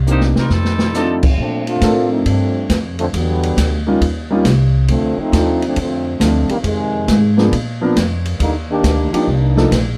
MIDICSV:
0, 0, Header, 1, 8, 480
1, 0, Start_track
1, 0, Key_signature, -2, "major"
1, 0, Tempo, 437956
1, 1518, Time_signature, 4, 2, 24, 8
1, 10935, End_track
2, 0, Start_track
2, 0, Title_t, "Trumpet section"
2, 0, Program_c, 0, 61
2, 1036, Note_on_c, 0, 75, 68
2, 1037, Note_on_c, 0, 74, 68
2, 1039, Note_on_c, 0, 69, 78
2, 1042, Note_on_c, 0, 81, 84
2, 1253, Note_off_c, 0, 74, 0
2, 1253, Note_off_c, 0, 75, 0
2, 1254, Note_off_c, 0, 69, 0
2, 1256, Note_off_c, 0, 81, 0
2, 10935, End_track
3, 0, Start_track
3, 0, Title_t, "Saxophone section"
3, 0, Program_c, 1, 65
3, 103, Note_on_c, 1, 58, 79
3, 103, Note_on_c, 1, 72, 97
3, 106, Note_on_c, 1, 67, 79
3, 110, Note_on_c, 1, 63, 82
3, 241, Note_off_c, 1, 58, 0
3, 241, Note_off_c, 1, 72, 0
3, 243, Note_off_c, 1, 67, 0
3, 246, Note_off_c, 1, 63, 0
3, 417, Note_on_c, 1, 55, 66
3, 418, Note_on_c, 1, 63, 67
3, 420, Note_on_c, 1, 70, 78
3, 430, Note_on_c, 1, 60, 67
3, 557, Note_off_c, 1, 55, 0
3, 557, Note_off_c, 1, 63, 0
3, 559, Note_off_c, 1, 70, 0
3, 564, Note_off_c, 1, 60, 0
3, 574, Note_on_c, 1, 63, 66
3, 579, Note_on_c, 1, 55, 68
3, 580, Note_on_c, 1, 69, 78
3, 586, Note_on_c, 1, 60, 67
3, 1366, Note_off_c, 1, 63, 0
3, 1368, Note_off_c, 1, 55, 0
3, 1369, Note_off_c, 1, 69, 0
3, 1372, Note_off_c, 1, 60, 0
3, 10935, End_track
4, 0, Start_track
4, 0, Title_t, "Grand piano"
4, 0, Program_c, 2, 0
4, 72, Note_on_c, 2, 58, 50
4, 74, Note_on_c, 2, 60, 44
4, 76, Note_on_c, 2, 62, 46
4, 83, Note_on_c, 2, 63, 43
4, 91, Note_on_c, 2, 67, 54
4, 362, Note_off_c, 2, 58, 0
4, 363, Note_off_c, 2, 60, 0
4, 364, Note_off_c, 2, 62, 0
4, 368, Note_off_c, 2, 63, 0
4, 371, Note_off_c, 2, 67, 0
4, 1032, Note_on_c, 2, 57, 55
4, 1037, Note_on_c, 2, 60, 50
4, 1040, Note_on_c, 2, 62, 47
4, 1046, Note_on_c, 2, 63, 49
4, 1053, Note_on_c, 2, 65, 60
4, 1323, Note_off_c, 2, 57, 0
4, 1325, Note_off_c, 2, 60, 0
4, 1327, Note_off_c, 2, 62, 0
4, 1330, Note_off_c, 2, 63, 0
4, 1333, Note_off_c, 2, 65, 0
4, 1998, Note_on_c, 2, 60, 55
4, 2000, Note_on_c, 2, 70, 59
4, 2006, Note_on_c, 2, 62, 52
4, 2013, Note_on_c, 2, 65, 50
4, 2016, Note_on_c, 2, 69, 68
4, 2735, Note_off_c, 2, 60, 0
4, 2736, Note_off_c, 2, 70, 0
4, 2739, Note_off_c, 2, 62, 0
4, 2742, Note_off_c, 2, 65, 0
4, 2744, Note_off_c, 2, 69, 0
4, 4238, Note_on_c, 2, 55, 64
4, 4241, Note_on_c, 2, 58, 60
4, 4247, Note_on_c, 2, 61, 59
4, 4254, Note_on_c, 2, 63, 57
4, 4258, Note_on_c, 2, 65, 71
4, 4384, Note_off_c, 2, 55, 0
4, 4386, Note_off_c, 2, 58, 0
4, 4388, Note_off_c, 2, 61, 0
4, 4392, Note_off_c, 2, 63, 0
4, 4394, Note_off_c, 2, 65, 0
4, 4718, Note_on_c, 2, 55, 68
4, 4719, Note_on_c, 2, 58, 62
4, 4730, Note_on_c, 2, 61, 62
4, 4732, Note_on_c, 2, 63, 63
4, 4740, Note_on_c, 2, 65, 71
4, 4864, Note_off_c, 2, 55, 0
4, 4864, Note_off_c, 2, 58, 0
4, 4870, Note_off_c, 2, 61, 0
4, 4871, Note_off_c, 2, 63, 0
4, 4875, Note_off_c, 2, 65, 0
4, 5841, Note_on_c, 2, 53, 56
4, 5843, Note_on_c, 2, 57, 52
4, 5852, Note_on_c, 2, 60, 54
4, 5855, Note_on_c, 2, 62, 51
4, 5861, Note_on_c, 2, 65, 58
4, 6129, Note_off_c, 2, 53, 0
4, 6130, Note_off_c, 2, 57, 0
4, 6135, Note_off_c, 2, 60, 0
4, 6136, Note_off_c, 2, 62, 0
4, 6139, Note_off_c, 2, 65, 0
4, 6793, Note_on_c, 2, 53, 61
4, 6799, Note_on_c, 2, 57, 55
4, 6804, Note_on_c, 2, 60, 53
4, 6809, Note_on_c, 2, 62, 51
4, 6813, Note_on_c, 2, 65, 67
4, 7085, Note_off_c, 2, 53, 0
4, 7088, Note_off_c, 2, 57, 0
4, 7091, Note_off_c, 2, 60, 0
4, 7094, Note_off_c, 2, 62, 0
4, 7095, Note_off_c, 2, 65, 0
4, 8076, Note_on_c, 2, 53, 59
4, 8081, Note_on_c, 2, 58, 58
4, 8086, Note_on_c, 2, 59, 60
4, 8090, Note_on_c, 2, 62, 59
4, 8098, Note_on_c, 2, 68, 65
4, 8223, Note_off_c, 2, 53, 0
4, 8226, Note_off_c, 2, 58, 0
4, 8228, Note_off_c, 2, 59, 0
4, 8230, Note_off_c, 2, 62, 0
4, 8234, Note_off_c, 2, 68, 0
4, 8563, Note_on_c, 2, 53, 68
4, 8567, Note_on_c, 2, 59, 65
4, 8569, Note_on_c, 2, 58, 63
4, 8577, Note_on_c, 2, 62, 63
4, 8583, Note_on_c, 2, 70, 74
4, 8706, Note_off_c, 2, 53, 0
4, 8708, Note_off_c, 2, 59, 0
4, 8709, Note_off_c, 2, 58, 0
4, 8714, Note_off_c, 2, 62, 0
4, 8716, Note_off_c, 2, 70, 0
4, 10000, Note_on_c, 2, 53, 65
4, 10005, Note_on_c, 2, 58, 60
4, 10010, Note_on_c, 2, 62, 59
4, 10016, Note_on_c, 2, 63, 59
4, 10022, Note_on_c, 2, 67, 74
4, 10144, Note_off_c, 2, 53, 0
4, 10146, Note_off_c, 2, 58, 0
4, 10149, Note_off_c, 2, 62, 0
4, 10152, Note_off_c, 2, 63, 0
4, 10155, Note_off_c, 2, 67, 0
4, 10475, Note_on_c, 2, 53, 59
4, 10483, Note_on_c, 2, 58, 59
4, 10487, Note_on_c, 2, 62, 57
4, 10492, Note_on_c, 2, 63, 58
4, 10498, Note_on_c, 2, 69, 71
4, 10620, Note_off_c, 2, 53, 0
4, 10625, Note_off_c, 2, 58, 0
4, 10627, Note_off_c, 2, 62, 0
4, 10629, Note_off_c, 2, 63, 0
4, 10632, Note_off_c, 2, 69, 0
4, 10935, End_track
5, 0, Start_track
5, 0, Title_t, "Trombone section"
5, 0, Program_c, 3, 61
5, 1509, Note_on_c, 3, 57, 80
5, 1512, Note_on_c, 3, 62, 90
5, 1515, Note_on_c, 3, 60, 76
5, 1517, Note_on_c, 3, 53, 79
5, 1804, Note_off_c, 3, 60, 0
5, 1808, Note_off_c, 3, 62, 0
5, 1811, Note_off_c, 3, 57, 0
5, 1815, Note_off_c, 3, 53, 0
5, 1817, Note_on_c, 3, 60, 83
5, 1821, Note_on_c, 3, 62, 82
5, 1821, Note_on_c, 3, 65, 100
5, 1824, Note_on_c, 3, 57, 87
5, 2287, Note_off_c, 3, 60, 0
5, 2289, Note_off_c, 3, 57, 0
5, 2299, Note_on_c, 3, 53, 72
5, 2300, Note_on_c, 3, 60, 69
5, 2303, Note_on_c, 3, 57, 74
5, 2306, Note_on_c, 3, 63, 82
5, 2310, Note_off_c, 3, 62, 0
5, 2310, Note_off_c, 3, 65, 0
5, 2458, Note_off_c, 3, 53, 0
5, 2458, Note_off_c, 3, 60, 0
5, 2460, Note_off_c, 3, 57, 0
5, 2461, Note_off_c, 3, 63, 0
5, 2473, Note_on_c, 3, 57, 66
5, 2474, Note_on_c, 3, 53, 67
5, 2475, Note_on_c, 3, 62, 77
5, 2477, Note_on_c, 3, 60, 65
5, 2957, Note_off_c, 3, 53, 0
5, 2957, Note_off_c, 3, 57, 0
5, 2958, Note_off_c, 3, 62, 0
5, 2959, Note_off_c, 3, 60, 0
5, 3268, Note_on_c, 3, 57, 82
5, 3271, Note_on_c, 3, 50, 84
5, 3273, Note_on_c, 3, 53, 83
5, 3276, Note_on_c, 3, 60, 101
5, 3343, Note_off_c, 3, 57, 0
5, 3345, Note_off_c, 3, 50, 0
5, 3347, Note_off_c, 3, 53, 0
5, 3349, Note_off_c, 3, 60, 0
5, 3437, Note_on_c, 3, 59, 101
5, 3439, Note_on_c, 3, 50, 83
5, 3441, Note_on_c, 3, 54, 85
5, 3443, Note_on_c, 3, 55, 89
5, 4195, Note_off_c, 3, 59, 0
5, 4196, Note_off_c, 3, 50, 0
5, 4197, Note_off_c, 3, 54, 0
5, 4198, Note_off_c, 3, 55, 0
5, 5366, Note_on_c, 3, 60, 95
5, 5368, Note_on_c, 3, 50, 79
5, 5368, Note_on_c, 3, 53, 79
5, 5368, Note_on_c, 3, 57, 83
5, 5661, Note_off_c, 3, 60, 0
5, 5662, Note_off_c, 3, 50, 0
5, 5662, Note_off_c, 3, 53, 0
5, 5662, Note_off_c, 3, 57, 0
5, 5695, Note_on_c, 3, 63, 112
5, 5698, Note_on_c, 3, 53, 90
5, 5700, Note_on_c, 3, 57, 86
5, 5700, Note_on_c, 3, 60, 91
5, 6169, Note_off_c, 3, 63, 0
5, 6170, Note_off_c, 3, 53, 0
5, 6171, Note_off_c, 3, 57, 0
5, 6171, Note_off_c, 3, 60, 0
5, 6201, Note_on_c, 3, 57, 82
5, 6202, Note_on_c, 3, 60, 79
5, 6208, Note_on_c, 3, 53, 78
5, 6210, Note_on_c, 3, 62, 97
5, 6342, Note_off_c, 3, 57, 0
5, 6342, Note_off_c, 3, 60, 0
5, 6346, Note_off_c, 3, 53, 0
5, 6346, Note_off_c, 3, 62, 0
5, 6360, Note_on_c, 3, 60, 81
5, 6364, Note_on_c, 3, 53, 69
5, 6366, Note_on_c, 3, 50, 68
5, 6367, Note_on_c, 3, 57, 66
5, 6789, Note_off_c, 3, 60, 0
5, 6791, Note_off_c, 3, 53, 0
5, 6792, Note_off_c, 3, 50, 0
5, 6792, Note_off_c, 3, 57, 0
5, 7125, Note_on_c, 3, 55, 84
5, 7127, Note_on_c, 3, 58, 94
5, 7131, Note_on_c, 3, 48, 84
5, 7131, Note_on_c, 3, 51, 88
5, 7197, Note_off_c, 3, 55, 0
5, 7198, Note_off_c, 3, 58, 0
5, 7201, Note_off_c, 3, 48, 0
5, 7201, Note_off_c, 3, 51, 0
5, 7276, Note_on_c, 3, 56, 95
5, 7278, Note_on_c, 3, 48, 87
5, 7279, Note_on_c, 3, 51, 85
5, 8034, Note_off_c, 3, 56, 0
5, 8036, Note_off_c, 3, 48, 0
5, 8036, Note_off_c, 3, 51, 0
5, 9217, Note_on_c, 3, 55, 74
5, 9220, Note_on_c, 3, 58, 77
5, 9221, Note_on_c, 3, 50, 75
5, 9222, Note_on_c, 3, 63, 81
5, 9357, Note_off_c, 3, 55, 0
5, 9359, Note_off_c, 3, 58, 0
5, 9360, Note_off_c, 3, 50, 0
5, 9361, Note_off_c, 3, 63, 0
5, 9526, Note_on_c, 3, 51, 92
5, 9530, Note_on_c, 3, 62, 90
5, 9532, Note_on_c, 3, 67, 100
5, 9534, Note_on_c, 3, 58, 89
5, 9969, Note_off_c, 3, 51, 0
5, 9971, Note_off_c, 3, 62, 0
5, 9972, Note_off_c, 3, 67, 0
5, 9973, Note_off_c, 3, 58, 0
5, 10005, Note_on_c, 3, 58, 73
5, 10005, Note_on_c, 3, 62, 72
5, 10006, Note_on_c, 3, 65, 87
5, 10008, Note_on_c, 3, 55, 75
5, 10104, Note_off_c, 3, 58, 0
5, 10104, Note_off_c, 3, 62, 0
5, 10104, Note_off_c, 3, 65, 0
5, 10105, Note_off_c, 3, 55, 0
5, 10128, Note_on_c, 3, 62, 54
5, 10164, Note_off_c, 3, 62, 0
5, 10176, Note_on_c, 3, 63, 75
5, 10177, Note_on_c, 3, 58, 64
5, 10177, Note_on_c, 3, 62, 65
5, 10181, Note_on_c, 3, 55, 66
5, 10647, Note_off_c, 3, 58, 0
5, 10647, Note_off_c, 3, 62, 0
5, 10647, Note_off_c, 3, 63, 0
5, 10649, Note_off_c, 3, 55, 0
5, 10935, End_track
6, 0, Start_track
6, 0, Title_t, "Upright bass"
6, 0, Program_c, 4, 32
6, 0, Note_on_c, 4, 36, 76
6, 351, Note_off_c, 4, 36, 0
6, 388, Note_on_c, 4, 48, 63
6, 538, Note_off_c, 4, 48, 0
6, 545, Note_on_c, 4, 41, 72
6, 1468, Note_off_c, 4, 41, 0
6, 1511, Note_on_c, 4, 46, 78
6, 1981, Note_off_c, 4, 46, 0
6, 1989, Note_on_c, 4, 45, 85
6, 2460, Note_off_c, 4, 45, 0
6, 2468, Note_on_c, 4, 43, 71
6, 2940, Note_off_c, 4, 43, 0
6, 2953, Note_on_c, 4, 41, 89
6, 3422, Note_off_c, 4, 41, 0
6, 3433, Note_on_c, 4, 40, 78
6, 3902, Note_off_c, 4, 40, 0
6, 3912, Note_on_c, 4, 38, 89
6, 4382, Note_off_c, 4, 38, 0
6, 4394, Note_on_c, 4, 39, 78
6, 4863, Note_off_c, 4, 39, 0
6, 4872, Note_on_c, 4, 36, 91
6, 5343, Note_off_c, 4, 36, 0
6, 5354, Note_on_c, 4, 38, 80
6, 5655, Note_off_c, 4, 38, 0
6, 5835, Note_on_c, 4, 39, 90
6, 6304, Note_off_c, 4, 39, 0
6, 6313, Note_on_c, 4, 41, 73
6, 6783, Note_off_c, 4, 41, 0
6, 6795, Note_on_c, 4, 38, 93
6, 7095, Note_off_c, 4, 38, 0
6, 7270, Note_on_c, 4, 41, 85
6, 7741, Note_off_c, 4, 41, 0
6, 7760, Note_on_c, 4, 44, 88
6, 8226, Note_off_c, 4, 44, 0
6, 8243, Note_on_c, 4, 46, 73
6, 8708, Note_off_c, 4, 46, 0
6, 8722, Note_on_c, 4, 41, 86
6, 9186, Note_off_c, 4, 41, 0
6, 9201, Note_on_c, 4, 39, 84
6, 9666, Note_off_c, 4, 39, 0
6, 9682, Note_on_c, 4, 38, 89
6, 9978, Note_off_c, 4, 38, 0
6, 10166, Note_on_c, 4, 36, 77
6, 10627, Note_off_c, 4, 36, 0
6, 10642, Note_on_c, 4, 34, 88
6, 10935, Note_off_c, 4, 34, 0
6, 10935, End_track
7, 0, Start_track
7, 0, Title_t, "Muted upright bass strokes"
7, 5672, Note_on_c, 9, 29, 40
7, 5781, Note_off_c, 9, 29, 0
7, 7118, Note_on_c, 9, 29, 41
7, 7227, Note_off_c, 9, 29, 0
7, 9997, Note_on_c, 9, 29, 38
7, 10107, Note_off_c, 9, 29, 0
7, 10935, End_track
8, 0, Start_track
8, 0, Title_t, "Drums"
8, 76, Note_on_c, 9, 44, 58
8, 186, Note_off_c, 9, 44, 0
8, 228, Note_on_c, 9, 38, 48
8, 337, Note_off_c, 9, 38, 0
8, 392, Note_on_c, 9, 38, 68
8, 501, Note_off_c, 9, 38, 0
8, 543, Note_on_c, 9, 38, 59
8, 653, Note_off_c, 9, 38, 0
8, 710, Note_on_c, 9, 38, 62
8, 820, Note_off_c, 9, 38, 0
8, 865, Note_on_c, 9, 38, 82
8, 974, Note_off_c, 9, 38, 0
8, 1031, Note_on_c, 9, 38, 52
8, 1032, Note_on_c, 9, 44, 62
8, 1140, Note_off_c, 9, 38, 0
8, 1141, Note_off_c, 9, 44, 0
8, 1345, Note_on_c, 9, 49, 69
8, 1352, Note_on_c, 9, 36, 75
8, 1454, Note_off_c, 9, 49, 0
8, 1461, Note_off_c, 9, 36, 0
8, 1510, Note_on_c, 9, 36, 27
8, 1620, Note_off_c, 9, 36, 0
8, 1831, Note_on_c, 9, 51, 46
8, 1941, Note_off_c, 9, 51, 0
8, 1987, Note_on_c, 9, 38, 66
8, 1989, Note_on_c, 9, 44, 60
8, 1989, Note_on_c, 9, 51, 64
8, 1992, Note_on_c, 9, 36, 22
8, 2097, Note_off_c, 9, 38, 0
8, 2098, Note_off_c, 9, 44, 0
8, 2098, Note_off_c, 9, 51, 0
8, 2101, Note_off_c, 9, 36, 0
8, 2474, Note_on_c, 9, 36, 19
8, 2474, Note_on_c, 9, 51, 66
8, 2583, Note_off_c, 9, 51, 0
8, 2584, Note_off_c, 9, 36, 0
8, 2953, Note_on_c, 9, 38, 68
8, 2954, Note_on_c, 9, 36, 25
8, 2954, Note_on_c, 9, 44, 59
8, 2954, Note_on_c, 9, 51, 69
8, 3063, Note_off_c, 9, 38, 0
8, 3064, Note_off_c, 9, 36, 0
8, 3064, Note_off_c, 9, 44, 0
8, 3064, Note_off_c, 9, 51, 0
8, 3274, Note_on_c, 9, 51, 45
8, 3383, Note_off_c, 9, 51, 0
8, 3435, Note_on_c, 9, 36, 18
8, 3438, Note_on_c, 9, 51, 64
8, 3544, Note_off_c, 9, 36, 0
8, 3547, Note_off_c, 9, 51, 0
8, 3763, Note_on_c, 9, 51, 49
8, 3872, Note_off_c, 9, 51, 0
8, 3917, Note_on_c, 9, 36, 21
8, 3919, Note_on_c, 9, 38, 72
8, 3920, Note_on_c, 9, 44, 61
8, 3920, Note_on_c, 9, 51, 74
8, 4026, Note_off_c, 9, 36, 0
8, 4028, Note_off_c, 9, 38, 0
8, 4029, Note_off_c, 9, 44, 0
8, 4029, Note_off_c, 9, 51, 0
8, 4396, Note_on_c, 9, 36, 26
8, 4400, Note_on_c, 9, 51, 63
8, 4505, Note_off_c, 9, 36, 0
8, 4510, Note_off_c, 9, 51, 0
8, 4874, Note_on_c, 9, 38, 71
8, 4875, Note_on_c, 9, 36, 23
8, 4875, Note_on_c, 9, 44, 60
8, 4875, Note_on_c, 9, 51, 70
8, 4984, Note_off_c, 9, 38, 0
8, 4985, Note_off_c, 9, 36, 0
8, 4985, Note_off_c, 9, 44, 0
8, 4985, Note_off_c, 9, 51, 0
8, 5352, Note_on_c, 9, 51, 60
8, 5356, Note_on_c, 9, 36, 22
8, 5461, Note_off_c, 9, 51, 0
8, 5466, Note_off_c, 9, 36, 0
8, 5838, Note_on_c, 9, 36, 24
8, 5842, Note_on_c, 9, 38, 68
8, 5843, Note_on_c, 9, 44, 48
8, 5843, Note_on_c, 9, 51, 73
8, 5948, Note_off_c, 9, 36, 0
8, 5951, Note_off_c, 9, 38, 0
8, 5952, Note_off_c, 9, 44, 0
8, 5952, Note_off_c, 9, 51, 0
8, 6162, Note_on_c, 9, 51, 50
8, 6271, Note_off_c, 9, 51, 0
8, 6314, Note_on_c, 9, 51, 69
8, 6318, Note_on_c, 9, 36, 21
8, 6424, Note_off_c, 9, 51, 0
8, 6428, Note_off_c, 9, 36, 0
8, 6799, Note_on_c, 9, 36, 23
8, 6803, Note_on_c, 9, 38, 71
8, 6804, Note_on_c, 9, 44, 62
8, 6804, Note_on_c, 9, 51, 72
8, 6909, Note_off_c, 9, 36, 0
8, 6912, Note_off_c, 9, 38, 0
8, 6914, Note_off_c, 9, 44, 0
8, 6914, Note_off_c, 9, 51, 0
8, 7116, Note_on_c, 9, 51, 50
8, 7226, Note_off_c, 9, 51, 0
8, 7277, Note_on_c, 9, 36, 27
8, 7277, Note_on_c, 9, 51, 60
8, 7386, Note_off_c, 9, 51, 0
8, 7387, Note_off_c, 9, 36, 0
8, 7760, Note_on_c, 9, 36, 20
8, 7760, Note_on_c, 9, 38, 65
8, 7761, Note_on_c, 9, 44, 52
8, 7761, Note_on_c, 9, 51, 68
8, 7869, Note_off_c, 9, 36, 0
8, 7870, Note_off_c, 9, 38, 0
8, 7871, Note_off_c, 9, 44, 0
8, 7871, Note_off_c, 9, 51, 0
8, 8086, Note_on_c, 9, 38, 59
8, 8195, Note_off_c, 9, 38, 0
8, 8243, Note_on_c, 9, 36, 25
8, 8249, Note_on_c, 9, 51, 68
8, 8353, Note_off_c, 9, 36, 0
8, 8359, Note_off_c, 9, 51, 0
8, 8725, Note_on_c, 9, 36, 19
8, 8729, Note_on_c, 9, 38, 73
8, 8730, Note_on_c, 9, 44, 57
8, 8730, Note_on_c, 9, 51, 78
8, 8835, Note_off_c, 9, 36, 0
8, 8838, Note_off_c, 9, 38, 0
8, 8839, Note_off_c, 9, 44, 0
8, 8839, Note_off_c, 9, 51, 0
8, 9047, Note_on_c, 9, 51, 50
8, 9156, Note_off_c, 9, 51, 0
8, 9206, Note_on_c, 9, 36, 24
8, 9206, Note_on_c, 9, 51, 68
8, 9315, Note_off_c, 9, 36, 0
8, 9316, Note_off_c, 9, 51, 0
8, 9685, Note_on_c, 9, 36, 20
8, 9688, Note_on_c, 9, 38, 68
8, 9689, Note_on_c, 9, 44, 65
8, 9689, Note_on_c, 9, 51, 69
8, 9795, Note_off_c, 9, 36, 0
8, 9797, Note_off_c, 9, 38, 0
8, 9798, Note_off_c, 9, 44, 0
8, 9798, Note_off_c, 9, 51, 0
8, 10016, Note_on_c, 9, 51, 71
8, 10125, Note_off_c, 9, 51, 0
8, 10166, Note_on_c, 9, 36, 19
8, 10276, Note_off_c, 9, 36, 0
8, 10490, Note_on_c, 9, 38, 62
8, 10600, Note_off_c, 9, 38, 0
8, 10645, Note_on_c, 9, 36, 22
8, 10651, Note_on_c, 9, 38, 71
8, 10652, Note_on_c, 9, 44, 55
8, 10652, Note_on_c, 9, 51, 72
8, 10755, Note_off_c, 9, 36, 0
8, 10761, Note_off_c, 9, 38, 0
8, 10762, Note_off_c, 9, 44, 0
8, 10762, Note_off_c, 9, 51, 0
8, 10935, End_track
0, 0, End_of_file